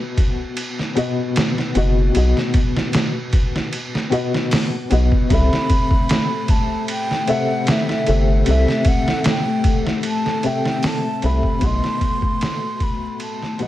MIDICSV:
0, 0, Header, 1, 6, 480
1, 0, Start_track
1, 0, Tempo, 789474
1, 1308, Time_signature, 4, 2, 24, 8
1, 8316, End_track
2, 0, Start_track
2, 0, Title_t, "Flute"
2, 0, Program_c, 0, 73
2, 3233, Note_on_c, 0, 83, 106
2, 3955, Note_on_c, 0, 81, 91
2, 3964, Note_off_c, 0, 83, 0
2, 4192, Note_off_c, 0, 81, 0
2, 4198, Note_on_c, 0, 79, 99
2, 4441, Note_on_c, 0, 78, 96
2, 4450, Note_off_c, 0, 79, 0
2, 4687, Note_on_c, 0, 76, 93
2, 4696, Note_off_c, 0, 78, 0
2, 5046, Note_off_c, 0, 76, 0
2, 5163, Note_on_c, 0, 76, 98
2, 5400, Note_on_c, 0, 78, 99
2, 5409, Note_off_c, 0, 76, 0
2, 5635, Note_off_c, 0, 78, 0
2, 5644, Note_on_c, 0, 79, 99
2, 5935, Note_off_c, 0, 79, 0
2, 6128, Note_on_c, 0, 81, 107
2, 6364, Note_on_c, 0, 79, 104
2, 6373, Note_off_c, 0, 81, 0
2, 6605, Note_on_c, 0, 81, 109
2, 6614, Note_off_c, 0, 79, 0
2, 6841, Note_on_c, 0, 83, 103
2, 6850, Note_off_c, 0, 81, 0
2, 7085, Note_on_c, 0, 84, 127
2, 7094, Note_off_c, 0, 83, 0
2, 7801, Note_on_c, 0, 83, 105
2, 7810, Note_off_c, 0, 84, 0
2, 8035, Note_off_c, 0, 83, 0
2, 8038, Note_on_c, 0, 81, 106
2, 8279, Note_on_c, 0, 78, 107
2, 8288, Note_off_c, 0, 81, 0
2, 8316, Note_off_c, 0, 78, 0
2, 8316, End_track
3, 0, Start_track
3, 0, Title_t, "Analog synth pad"
3, 0, Program_c, 1, 89
3, 3219, Note_on_c, 1, 69, 76
3, 3222, Note_on_c, 1, 57, 83
3, 8316, Note_off_c, 1, 57, 0
3, 8316, Note_off_c, 1, 69, 0
3, 8316, End_track
4, 0, Start_track
4, 0, Title_t, "Felt piano"
4, 0, Program_c, 2, 0
4, 0, Control_c, 2, 64, 127
4, 0, Note_on_c, 2, 47, 83
4, 0, Note_on_c, 2, 59, 76
4, 0, Note_on_c, 2, 66, 76
4, 0, Note_on_c, 2, 75, 94
4, 552, Note_off_c, 2, 47, 0
4, 558, Note_off_c, 2, 59, 0
4, 564, Note_off_c, 2, 66, 0
4, 569, Note_off_c, 2, 75, 0
4, 579, Note_on_c, 2, 47, 94
4, 586, Note_on_c, 2, 59, 83
4, 592, Note_on_c, 2, 66, 82
4, 597, Note_on_c, 2, 75, 100
4, 1037, Note_off_c, 2, 47, 0
4, 1040, Note_off_c, 2, 59, 0
4, 1044, Note_off_c, 2, 66, 0
4, 1046, Note_off_c, 2, 75, 0
4, 1063, Note_on_c, 2, 47, 91
4, 1070, Note_on_c, 2, 59, 78
4, 1077, Note_on_c, 2, 66, 86
4, 1083, Note_on_c, 2, 75, 99
4, 1279, Note_off_c, 2, 47, 0
4, 1282, Note_off_c, 2, 59, 0
4, 1286, Note_off_c, 2, 66, 0
4, 1289, Note_off_c, 2, 75, 0
4, 1290, Note_on_c, 2, 47, 82
4, 1302, Note_on_c, 2, 59, 79
4, 1314, Note_on_c, 2, 66, 77
4, 1323, Note_on_c, 2, 75, 92
4, 2473, Note_off_c, 2, 47, 0
4, 2478, Note_off_c, 2, 59, 0
4, 2484, Note_off_c, 2, 66, 0
4, 2489, Note_off_c, 2, 75, 0
4, 2495, Note_on_c, 2, 47, 86
4, 2502, Note_on_c, 2, 59, 84
4, 2506, Note_on_c, 2, 66, 85
4, 2513, Note_on_c, 2, 75, 100
4, 2955, Note_off_c, 2, 47, 0
4, 2958, Note_off_c, 2, 59, 0
4, 2961, Note_off_c, 2, 66, 0
4, 2964, Note_off_c, 2, 75, 0
4, 2980, Note_on_c, 2, 47, 87
4, 2987, Note_on_c, 2, 59, 86
4, 2991, Note_on_c, 2, 66, 82
4, 2998, Note_on_c, 2, 75, 98
4, 3198, Note_off_c, 2, 47, 0
4, 3201, Note_off_c, 2, 59, 0
4, 3203, Note_off_c, 2, 66, 0
4, 3207, Note_off_c, 2, 75, 0
4, 3215, Note_on_c, 2, 48, 82
4, 3225, Note_on_c, 2, 60, 77
4, 3236, Note_on_c, 2, 69, 75
4, 3238, Control_c, 2, 64, 0
4, 3246, Note_on_c, 2, 76, 95
4, 3333, Control_c, 2, 64, 127
4, 4395, Note_off_c, 2, 48, 0
4, 4400, Note_off_c, 2, 60, 0
4, 4405, Note_off_c, 2, 69, 0
4, 4411, Note_off_c, 2, 76, 0
4, 4421, Note_on_c, 2, 48, 91
4, 4424, Note_on_c, 2, 60, 87
4, 4431, Note_on_c, 2, 69, 85
4, 4435, Note_on_c, 2, 76, 103
4, 4878, Note_off_c, 2, 48, 0
4, 4880, Note_off_c, 2, 60, 0
4, 4883, Note_off_c, 2, 69, 0
4, 4885, Note_off_c, 2, 76, 0
4, 4904, Note_on_c, 2, 48, 91
4, 4907, Note_on_c, 2, 60, 84
4, 4912, Note_on_c, 2, 69, 81
4, 4920, Note_on_c, 2, 76, 97
4, 5120, Note_off_c, 2, 48, 0
4, 5121, Note_off_c, 2, 60, 0
4, 5124, Note_off_c, 2, 69, 0
4, 5127, Note_off_c, 2, 76, 0
4, 5136, Note_on_c, 2, 48, 81
4, 5149, Note_on_c, 2, 60, 80
4, 5159, Note_on_c, 2, 69, 79
4, 5171, Note_on_c, 2, 76, 94
4, 6316, Note_off_c, 2, 48, 0
4, 6322, Note_off_c, 2, 60, 0
4, 6327, Note_off_c, 2, 69, 0
4, 6333, Note_off_c, 2, 76, 0
4, 6344, Note_on_c, 2, 48, 95
4, 6347, Note_on_c, 2, 60, 85
4, 6356, Note_on_c, 2, 69, 84
4, 6359, Note_on_c, 2, 76, 104
4, 6799, Note_off_c, 2, 48, 0
4, 6801, Note_off_c, 2, 60, 0
4, 6805, Note_off_c, 2, 69, 0
4, 6807, Note_off_c, 2, 76, 0
4, 6826, Note_on_c, 2, 48, 96
4, 6830, Note_on_c, 2, 60, 83
4, 6836, Note_on_c, 2, 69, 84
4, 6843, Note_on_c, 2, 76, 100
4, 7041, Note_off_c, 2, 48, 0
4, 7042, Note_off_c, 2, 60, 0
4, 7045, Note_off_c, 2, 69, 0
4, 7049, Note_off_c, 2, 76, 0
4, 7051, Note_on_c, 2, 47, 85
4, 7065, Note_on_c, 2, 59, 74
4, 7075, Control_c, 2, 64, 0
4, 7078, Note_on_c, 2, 66, 82
4, 7089, Note_on_c, 2, 75, 89
4, 7189, Control_c, 2, 64, 127
4, 8233, Note_off_c, 2, 47, 0
4, 8240, Note_off_c, 2, 59, 0
4, 8247, Note_off_c, 2, 66, 0
4, 8252, Note_off_c, 2, 75, 0
4, 8264, Note_on_c, 2, 47, 91
4, 8271, Note_on_c, 2, 59, 88
4, 8276, Note_on_c, 2, 54, 89
4, 8281, Note_on_c, 2, 75, 103
4, 8316, Note_off_c, 2, 47, 0
4, 8316, Note_off_c, 2, 54, 0
4, 8316, Note_off_c, 2, 59, 0
4, 8316, Note_off_c, 2, 75, 0
4, 8316, End_track
5, 0, Start_track
5, 0, Title_t, "Analog synth bass"
5, 0, Program_c, 3, 38
5, 1069, Note_on_c, 3, 30, 102
5, 1282, Note_off_c, 3, 30, 0
5, 1312, Note_on_c, 3, 35, 100
5, 1423, Note_off_c, 3, 35, 0
5, 2990, Note_on_c, 3, 35, 87
5, 3102, Note_off_c, 3, 35, 0
5, 3225, Note_on_c, 3, 36, 98
5, 3339, Note_off_c, 3, 36, 0
5, 4915, Note_on_c, 3, 31, 94
5, 5125, Note_off_c, 3, 31, 0
5, 5155, Note_on_c, 3, 36, 101
5, 5264, Note_off_c, 3, 36, 0
5, 6831, Note_on_c, 3, 36, 88
5, 6943, Note_off_c, 3, 36, 0
5, 7063, Note_on_c, 3, 35, 100
5, 7178, Note_off_c, 3, 35, 0
5, 8316, End_track
6, 0, Start_track
6, 0, Title_t, "Drums"
6, 106, Note_on_c, 9, 36, 97
6, 107, Note_on_c, 9, 51, 69
6, 167, Note_off_c, 9, 36, 0
6, 168, Note_off_c, 9, 51, 0
6, 345, Note_on_c, 9, 51, 93
6, 406, Note_off_c, 9, 51, 0
6, 482, Note_on_c, 9, 38, 37
6, 543, Note_off_c, 9, 38, 0
6, 587, Note_on_c, 9, 51, 67
6, 648, Note_off_c, 9, 51, 0
6, 826, Note_on_c, 9, 51, 85
6, 835, Note_on_c, 9, 38, 114
6, 887, Note_off_c, 9, 51, 0
6, 896, Note_off_c, 9, 38, 0
6, 962, Note_on_c, 9, 38, 47
6, 1023, Note_off_c, 9, 38, 0
6, 1065, Note_on_c, 9, 51, 70
6, 1126, Note_off_c, 9, 51, 0
6, 1306, Note_on_c, 9, 51, 80
6, 1366, Note_off_c, 9, 51, 0
6, 1441, Note_on_c, 9, 38, 42
6, 1502, Note_off_c, 9, 38, 0
6, 1543, Note_on_c, 9, 51, 70
6, 1544, Note_on_c, 9, 36, 93
6, 1604, Note_off_c, 9, 51, 0
6, 1605, Note_off_c, 9, 36, 0
6, 1681, Note_on_c, 9, 38, 54
6, 1742, Note_off_c, 9, 38, 0
6, 1782, Note_on_c, 9, 51, 90
6, 1791, Note_on_c, 9, 38, 115
6, 1843, Note_off_c, 9, 51, 0
6, 1852, Note_off_c, 9, 38, 0
6, 2023, Note_on_c, 9, 51, 70
6, 2024, Note_on_c, 9, 36, 95
6, 2083, Note_off_c, 9, 51, 0
6, 2085, Note_off_c, 9, 36, 0
6, 2163, Note_on_c, 9, 38, 51
6, 2223, Note_off_c, 9, 38, 0
6, 2266, Note_on_c, 9, 51, 88
6, 2326, Note_off_c, 9, 51, 0
6, 2402, Note_on_c, 9, 38, 47
6, 2463, Note_off_c, 9, 38, 0
6, 2506, Note_on_c, 9, 51, 64
6, 2566, Note_off_c, 9, 51, 0
6, 2641, Note_on_c, 9, 38, 52
6, 2702, Note_off_c, 9, 38, 0
6, 2744, Note_on_c, 9, 46, 80
6, 2753, Note_on_c, 9, 38, 111
6, 2805, Note_off_c, 9, 46, 0
6, 2813, Note_off_c, 9, 38, 0
6, 2983, Note_on_c, 9, 51, 65
6, 3044, Note_off_c, 9, 51, 0
6, 3112, Note_on_c, 9, 36, 90
6, 3172, Note_off_c, 9, 36, 0
6, 3224, Note_on_c, 9, 36, 106
6, 3224, Note_on_c, 9, 51, 82
6, 3285, Note_off_c, 9, 36, 0
6, 3285, Note_off_c, 9, 51, 0
6, 3362, Note_on_c, 9, 38, 52
6, 3422, Note_off_c, 9, 38, 0
6, 3463, Note_on_c, 9, 51, 66
6, 3464, Note_on_c, 9, 36, 96
6, 3524, Note_off_c, 9, 51, 0
6, 3525, Note_off_c, 9, 36, 0
6, 3592, Note_on_c, 9, 36, 92
6, 3653, Note_off_c, 9, 36, 0
6, 3705, Note_on_c, 9, 51, 91
6, 3713, Note_on_c, 9, 38, 108
6, 3765, Note_off_c, 9, 51, 0
6, 3774, Note_off_c, 9, 38, 0
6, 3942, Note_on_c, 9, 51, 71
6, 3943, Note_on_c, 9, 36, 92
6, 4002, Note_off_c, 9, 51, 0
6, 4004, Note_off_c, 9, 36, 0
6, 4185, Note_on_c, 9, 51, 96
6, 4245, Note_off_c, 9, 51, 0
6, 4323, Note_on_c, 9, 38, 36
6, 4383, Note_off_c, 9, 38, 0
6, 4423, Note_on_c, 9, 51, 67
6, 4484, Note_off_c, 9, 51, 0
6, 4662, Note_on_c, 9, 51, 86
6, 4671, Note_on_c, 9, 38, 106
6, 4723, Note_off_c, 9, 51, 0
6, 4732, Note_off_c, 9, 38, 0
6, 4798, Note_on_c, 9, 38, 47
6, 4859, Note_off_c, 9, 38, 0
6, 4904, Note_on_c, 9, 51, 65
6, 4965, Note_off_c, 9, 51, 0
6, 5143, Note_on_c, 9, 51, 88
6, 5204, Note_off_c, 9, 51, 0
6, 5279, Note_on_c, 9, 38, 41
6, 5340, Note_off_c, 9, 38, 0
6, 5379, Note_on_c, 9, 51, 72
6, 5382, Note_on_c, 9, 36, 97
6, 5439, Note_off_c, 9, 51, 0
6, 5443, Note_off_c, 9, 36, 0
6, 5519, Note_on_c, 9, 38, 56
6, 5580, Note_off_c, 9, 38, 0
6, 5620, Note_on_c, 9, 51, 92
6, 5628, Note_on_c, 9, 38, 117
6, 5681, Note_off_c, 9, 51, 0
6, 5689, Note_off_c, 9, 38, 0
6, 5861, Note_on_c, 9, 51, 66
6, 5862, Note_on_c, 9, 36, 92
6, 5922, Note_off_c, 9, 51, 0
6, 5923, Note_off_c, 9, 36, 0
6, 5998, Note_on_c, 9, 38, 51
6, 6059, Note_off_c, 9, 38, 0
6, 6099, Note_on_c, 9, 51, 92
6, 6160, Note_off_c, 9, 51, 0
6, 6238, Note_on_c, 9, 38, 43
6, 6299, Note_off_c, 9, 38, 0
6, 6342, Note_on_c, 9, 51, 71
6, 6403, Note_off_c, 9, 51, 0
6, 6478, Note_on_c, 9, 38, 50
6, 6539, Note_off_c, 9, 38, 0
6, 6583, Note_on_c, 9, 46, 81
6, 6591, Note_on_c, 9, 38, 112
6, 6643, Note_off_c, 9, 46, 0
6, 6652, Note_off_c, 9, 38, 0
6, 6824, Note_on_c, 9, 51, 67
6, 6884, Note_off_c, 9, 51, 0
6, 6950, Note_on_c, 9, 36, 97
6, 7011, Note_off_c, 9, 36, 0
6, 7059, Note_on_c, 9, 51, 81
6, 7062, Note_on_c, 9, 36, 103
6, 7120, Note_off_c, 9, 51, 0
6, 7122, Note_off_c, 9, 36, 0
6, 7198, Note_on_c, 9, 38, 51
6, 7259, Note_off_c, 9, 38, 0
6, 7302, Note_on_c, 9, 36, 93
6, 7303, Note_on_c, 9, 51, 68
6, 7363, Note_off_c, 9, 36, 0
6, 7364, Note_off_c, 9, 51, 0
6, 7431, Note_on_c, 9, 36, 95
6, 7492, Note_off_c, 9, 36, 0
6, 7546, Note_on_c, 9, 51, 93
6, 7555, Note_on_c, 9, 38, 111
6, 7607, Note_off_c, 9, 51, 0
6, 7616, Note_off_c, 9, 38, 0
6, 7784, Note_on_c, 9, 36, 104
6, 7785, Note_on_c, 9, 51, 68
6, 7845, Note_off_c, 9, 36, 0
6, 7846, Note_off_c, 9, 51, 0
6, 8025, Note_on_c, 9, 51, 90
6, 8085, Note_off_c, 9, 51, 0
6, 8162, Note_on_c, 9, 38, 39
6, 8223, Note_off_c, 9, 38, 0
6, 8263, Note_on_c, 9, 51, 68
6, 8316, Note_off_c, 9, 51, 0
6, 8316, End_track
0, 0, End_of_file